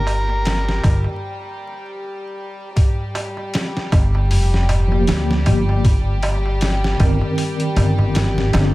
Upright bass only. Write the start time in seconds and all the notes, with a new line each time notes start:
Already playing: G1
0.84 G1
3.93 G1
4.31 F1
5.08 D2
5.47 G1
7.00 G1
7.76 G1
8.54 G1